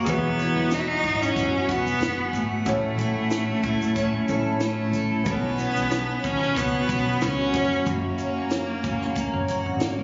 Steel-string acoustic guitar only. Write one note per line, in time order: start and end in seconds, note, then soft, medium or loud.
0.00 0.14 A#3 medium
0.00 0.14 C#4 medium
0.00 0.42 F#4 medium
0.06 3.56 E3 medium
0.39 1.04 E4 medium
0.71 1.35 B3 medium
1.04 2.98 E4 medium
1.36 2.00 B3 medium
1.69 2.32 F#4 medium
2.01 2.73 B3 medium
2.33 2.73 F#4 medium
2.66 5.26 A2 medium
2.99 3.63 E4 medium
3.32 3.95 C#4 medium
3.64 5.33 E4 medium
3.96 4.60 C#4 medium
4.28 4.92 A4 medium
4.60 5.58 C#4 medium
4.93 5.33 A4 medium
5.26 7.54 B2 medium
5.58 6.24 C#4 medium
5.91 6.56 B3 medium
6.24 8.18 C#4 medium
6.57 7.21 B3 medium
6.90 9.48 F#4 medium
7.22 7.61 B3 medium
7.54 7.85 F#2 medium
7.86 10.03 F#2 medium
8.18 8.83 C#4 medium
8.51 9.14 A#3 medium
8.84 10.03 C#4 medium
9.15 9.79 A#3 medium
9.48 10.03 F#4 medium
9.80 10.03 A#3 medium